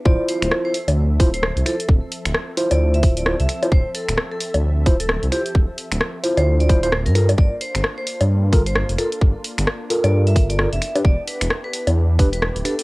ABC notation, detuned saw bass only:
X:1
M:4/4
L:1/16
Q:"Swing 16ths" 1/4=131
K:Dm
V:1 name="Detuned saw bass" clef=bass
D,,, z2 D,,, z3 D,,3 D,,,3 C,, z2 | D,,, z2 D,,, z3 D,,3 D,,,3 C,, z2 | D,,, z2 D,,, z3 D,,3 D,,,3 C,, z2 | D,,, z2 D,,, z3 D,,3 D,,,3 G,,3 |
G,,, z2 G,,, z3 G,,3 G,,,3 F,,, z2 | G,,, z2 G,,, z3 G,,3 G,,,3 F,,, z2 | E,,, z2 E,,, z3 E,,3 E,,,3 D,,, z2 |]